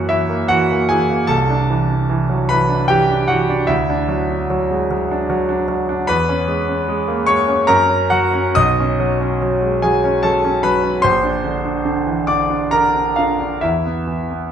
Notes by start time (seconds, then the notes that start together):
Already playing: F#2 E3 F#3 A#3 F#4 F#5
0.09 E3 E4 E5
0.29 A#3
0.48 E3 F#4 F#5
0.71 A#3
0.89 E3 G#4 G#5
1.10 A#3
1.27 C2 A4 A5
1.50 D4
1.70 E3
1.90 D4
2.09 E3
2.30 F#3
2.49 E3 B4 B5
2.69 D4
2.88 E3 G4 G5
3.10 D4
3.28 E3 F#4 F#5
3.49 D4
3.67 D2 E4 E5
3.90 D4
4.08 F#3
4.30 D4
4.50 F#3
4.71 G#3
4.91 F#3
5.11 D4
5.30 F#3
5.49 D4
5.68 F#3
5.89 D4
6.07 E2 B4 B5
6.29 C#4
6.48 G#3
6.68 C#4
6.88 G#3
7.08 A#3
7.26 G#3 C#5 C#6
7.48 C#4
7.67 F#2 A#4 A#5
7.90 C#4
8.10 F#3 F#4 F#5
8.34 C#4
8.55 B1 D#5 D#6
8.80 C#4
9.00 F#3
9.20 C#4
9.42 F#3
9.62 G#3
9.82 F#3 G#4 G#5
10.04 C#4
10.23 F#3 A4 A5
10.45 C#4
10.63 F#3 B4 B5
10.83 C#4
11.02 A#1 C5 C6
11.24 D4
11.44 D3
11.65 D4
11.85 D3
12.06 E3
12.27 D3 D5 D6
12.50 D4
12.71 D3 A#4 A#5
12.94 D4
13.16 D3 F4 F5
13.41 D4
13.61 E2 E4 E5
13.86 B3
14.07 E3
14.31 B3